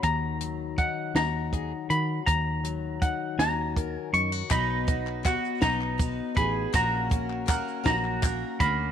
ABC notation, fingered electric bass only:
X:1
M:6/8
L:1/8
Q:3/8=54
K:D#m
V:1 name="Fingered electric bass" clef=bass
D,,3 D,,2 D, | D,,3 D,,2 F,, | B,,,3 B,,,2 =A,,, | A,,,3 A,,,2 =D,, |]